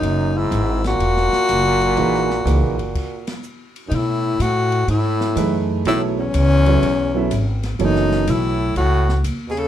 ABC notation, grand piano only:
X:1
M:4/4
L:1/8
Q:"Swing" 1/4=124
K:F#mix
V:1 name="Grand piano"
z8 | [E,A,DGB] z [E,A,DGB] z4 z | [K:Bmix] z6 [E,A,DGB]2 | [F,B,EAc] z2 [F,B,EAc] z [F,B,EAe] z2 |
[E,F,B,Ac]3 z4 z |]